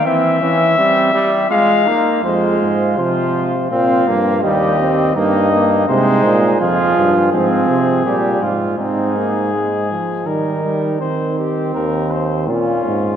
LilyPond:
<<
  \new Staff \with { instrumentName = "Trumpet" } { \time 3/4 \key f \minor \tempo 4 = 82 e''2 f''4 | c''4 c''4 f''4 | ees''4 ees''4 c''4 | \key ees \mixolydian aes'4 aes'4. r8 |
aes'2 bes'4 | c''8 g'8 bes'8 c''8 f'4 | }
  \new Staff \with { instrumentName = "Flugelhorn" } { \time 3/4 \key f \minor c'8 des'8 c'8 g'8 f'8 ees'8 | f'4 f'4 f'4 | g'4 ees'4 ees'4 | \key ees \mixolydian f'4 c'4 g'8 f'8 |
ees'4. r8 ees'4 | c'2 des'4 | }
  \new Staff \with { instrumentName = "Trombone" } { \clef bass \time 3/4 \key f \minor e8 e8 g8 g8 aes8 bes8 | aes4 f4 c'8 bes8 | g8 c'8 bes8 bes8 aes4 | \key ees \mixolydian f4 f4 g8 r8 |
c'8 bes8 aes8 f8 g8 g8 | r2. | }
  \new Staff \with { instrumentName = "Euphonium" } { \clef bass \time 3/4 \key f \minor r2. | f,8 aes,8 c4 bes,8 g,8 | ees,4 g,4 c8 bes,8 | \key ees \mixolydian f,8 g,8 aes,8 c8 bes,8 aes,8 |
aes,4. r8 ees4 | ees4 ees,4 bes,8 aes,8 | }
>>